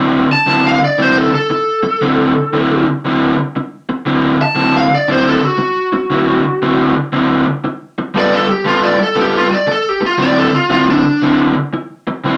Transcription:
Already playing: D3 F#3 C4 E4
0.29 A5, muted overdriven electric guitar stroke
0.46 D3 F#3 C4 E4
0.67 F5
0.81 D5, muted overdriven electric guitar stroke
0.98 D3 F#3 C4 E4 C5
1.18 A4
1.32 A4, muted overdriven electric guitar stroke
1.50 muted overdriven electric guitar stroke
1.83 muted overdriven electric guitar stroke
2.01 D3 F#3 C4 E4
2.35 muted overdriven electric guitar stroke
2.53 D3 F#3 C4 E4
2.88 muted overdriven electric guitar stroke
3.05 D3 F#3 C4 E4
3.38 muted overdriven electric guitar stroke
3.56 muted overdriven electric guitar stroke
3.89 muted overdriven electric guitar stroke
4.06 D3 F#3 C4 E4
4.39 A5, muted overdriven electric guitar stroke
4.55 D3 F#3 C4 E4
4.77 F5
4.89 muted overdriven electric guitar stroke
4.95 D5
5.08 D3 F#3 C4 E4
5.12 C5
5.29 A4
5.41 F#4, muted overdriven electric guitar stroke
5.58 muted overdriven electric guitar stroke
5.92 muted overdriven electric guitar stroke
6.10 D3 F#3 C4 E4
6.44 muted overdriven electric guitar stroke
6.62 D3 F#3 C4 E4
6.95 muted overdriven electric guitar stroke
7.12 D3 F#3 C4 E4
7.47 muted overdriven electric guitar stroke
7.64 muted overdriven electric guitar stroke
7.98 muted overdriven electric guitar stroke
8.14 G3 B3 F4 A4
8.19 D5
8.34 A4
8.48 G4, muted overdriven electric guitar stroke
8.65 G3 B3 F4 A4
8.84 D5
8.99 muted overdriven electric guitar stroke
9.03 A4
9.16 G3 B3 F4 A4
9.21 G4
9.37 F4
9.49 muted overdriven electric guitar stroke
9.54 D5
9.67 muted overdriven electric guitar stroke
9.71 A4
9.89 G4
10.01 muted overdriven electric guitar stroke
10.06 F4
10.18 D3 F#3 C4 E4
10.22 D5
10.38 A4
10.52 F4, muted overdriven electric guitar stroke
10.69 D3 F#3 C4 E4 F4
10.90 D4
11.03 muted overdriven electric guitar stroke
11.22 D3 F#3 C4 E4
11.56 muted overdriven electric guitar stroke
11.73 muted overdriven electric guitar stroke
12.07 muted overdriven electric guitar stroke
12.24 D3 F#3 C4 E4

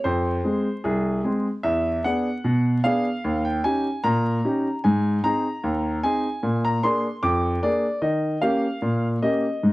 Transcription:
0.04 F2 C5
0.44 G#3 C4 G#4
0.84 C2 G#4
1.24 G#3 C4 G#4
1.63 E2 E5
2.04 B3 D4 G#4 F#5
2.44 B2
2.84 B3 D4 G#4 F5
3.24 D#2
3.45 G5
3.64 C#4 D#4 G4 G#5
4.04 A#2 A#5
4.45 C#4 D#4 G4
4.84 G#2 G#5
5.24 C4 D#4 G#4 A#5
5.64 D#2
6.03 C4 D#4 G#4 G#5
6.43 A#2
6.65 A#5
6.83 A#3 D4 G#4 C6
7.23 F2 D6
7.63 A#3 D4 G#4 D5
8.02 D#3 D#5
8.41 A#3 C#4 G4 F5
8.82 A#2
9.22 A#3 C#4 G4 D#5
9.63 G#2

